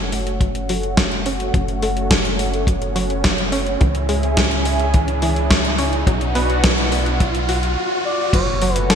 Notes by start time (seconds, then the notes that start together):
Already playing: F#1 A3 C#4 F#4, riser
0.12 A3, open hi-hat
0.27 closed hi-hat
0.41 F#3, kick, closed hi-hat
0.55 closed hi-hat
0.69 F#3, open hi-hat
0.83 closed hi-hat
0.97 C#5, kick, snare, closed hi-hat
1.12 closed hi-hat
1.26 C#4, open hi-hat
1.40 closed hi-hat
1.54 F#1 F#3, kick, closed hi-hat
1.68 closed hi-hat
1.82 A3, open hi-hat
1.97 closed hi-hat
2.11 A3, kick, snare, closed hi-hat
2.25 closed hi-hat
2.39 A3, open hi-hat
2.54 closed hi-hat
2.67 F#3, kick, closed hi-hat
2.82 closed hi-hat
2.96 F#3, open hi-hat
3.10 closed hi-hat
3.24 C#5, kick, snare, closed hi-hat
3.38 closed hi-hat
3.52 C#4, open hi-hat
3.67 closed hi-hat
3.81 C#2 C#3 E3 E4 G#4, kick, closed hi-hat
3.95 closed hi-hat
4.09 G#3, open hi-hat
4.23 closed hi-hat
4.37 G#3, kick, snare, closed hi-hat
4.51 closed hi-hat
4.65 G#3, open hi-hat
4.79 closed hi-hat
4.94 E3, kick, closed hi-hat
5.08 closed hi-hat
5.22 E3, open hi-hat
5.36 closed hi-hat
5.50 C#5, kick, snare, closed hi-hat
5.65 closed hi-hat
5.79 C#4, open hi-hat
5.93 closed hi-hat
6.07 B1 F#3 B3 D4 F#4, kick, closed hi-hat
6.21 closed hi-hat
6.35 B3, open hi-hat
6.50 closed hi-hat
6.64 B3, kick, snare, closed hi-hat
6.78 closed hi-hat
6.92 B3, open hi-hat
7.06 closed hi-hat
7.20 F#3, kick, closed hi-hat, swell
7.35 closed hi-hat
7.49 F#4, open hi-hat
7.63 closed hi-hat
8.05 D5
8.33 F#1 F#3 A3 C#4 F#4 C#5, kick, closed hi-hat, crash, impact
8.62 F#3, open hi-hat
8.75 B4, closed hi-hat
8.90 A4, snare, closed hi-hat